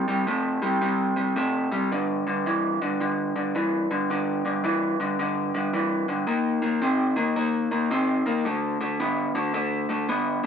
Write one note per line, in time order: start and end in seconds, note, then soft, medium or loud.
0.08 0.25 C3 medium
0.08 0.26 G3 medium
0.27 0.59 C3 medium
0.27 0.59 A3 medium
0.62 0.80 C3 medium
0.62 0.80 G3 medium
0.81 1.13 C3 medium
0.81 1.14 G3 medium
1.16 1.34 C3 medium
1.16 1.35 G3 medium
1.36 1.68 C3 medium
1.36 1.68 A3 medium
1.72 1.89 C3 medium
1.72 1.90 G3 medium
1.92 2.23 G2 medium
1.92 2.24 D3 loud
2.27 2.44 G2 medium
2.27 2.45 D3 medium
2.46 2.78 G2 medium
2.46 2.78 E3 medium
2.82 2.99 G2 medium
2.82 2.99 D3 medium
3.00 3.32 G2 medium
3.00 3.33 D3 medium
3.36 3.53 G2 medium
3.36 3.54 D3 medium
3.55 3.87 G2 medium
3.55 3.87 E3 medium
3.91 4.08 G2 medium
3.91 4.08 D3 medium
4.10 4.42 G2 medium
4.10 4.42 D3 medium
4.45 4.62 G2 medium
4.45 4.63 D3 medium
4.64 4.96 G2 medium
4.64 4.96 E3 medium
5.00 5.17 G2 medium
5.00 5.17 D3 medium
5.19 5.51 G2 medium
5.19 5.51 D3 medium
5.54 5.72 G2 medium
5.54 5.72 D3 medium
5.73 6.05 G2 medium
5.73 6.05 E3 medium
6.08 6.26 G2 medium
6.08 6.26 D3 medium
6.27 6.59 D#3 medium
6.27 6.59 A#3 medium
6.62 6.80 D#3 medium
6.62 6.80 A#3 medium
6.82 7.13 D#3 medium
6.82 7.14 C4 medium
7.16 7.34 D#3 medium
7.16 7.34 A#3 medium
7.36 7.68 D#3 medium
7.36 7.68 A#3 medium
7.71 7.89 D#3 medium
7.71 7.89 A#3 medium
7.91 8.22 D#3 medium
7.91 8.23 C4 medium
8.26 8.43 D#3 medium
8.26 8.44 A#3 medium
8.45 8.77 D3 medium
8.45 8.77 A3 medium
8.81 8.98 D3 medium
8.81 8.98 A3 medium
9.00 9.31 D3 medium
9.00 9.32 B3 medium
9.35 9.52 D3 medium
9.35 9.53 A3 medium
9.54 9.86 D3 medium
9.54 9.86 A3 medium
9.89 10.07 D3 medium
9.89 10.07 A3 medium
10.09 10.40 D3 medium
10.09 10.40 B3 medium